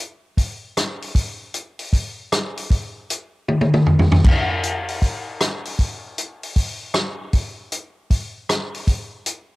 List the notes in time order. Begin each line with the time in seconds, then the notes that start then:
0.37 kick, open hi-hat
0.77 cross-stick, closed hi-hat
1.02 open hi-hat
1.15 kick, open hi-hat
1.54 closed hi-hat
1.79 open hi-hat
1.93 kick, open hi-hat
2.32 cross-stick, closed hi-hat
2.57 open hi-hat
2.71 kick, open hi-hat
3.10 closed hi-hat
3.48 high tom
3.61 high tom
3.74 high tom
3.86 floor tom
3.99 floor tom
4.12 floor tom
4.24 kick, crash
4.63 closed hi-hat
4.88 open hi-hat
5.02 kick, open hi-hat
5.41 cross-stick, closed hi-hat
5.65 open hi-hat
5.79 kick, open hi-hat
6.18 closed hi-hat
6.43 open hi-hat
6.56 kick, open hi-hat
6.94 cross-stick, closed hi-hat
7.33 kick, open hi-hat
7.72 closed hi-hat
8.10 kick, open hi-hat
8.49 cross-stick, closed hi-hat
8.74 open hi-hat
8.87 kick, open hi-hat
9.26 closed hi-hat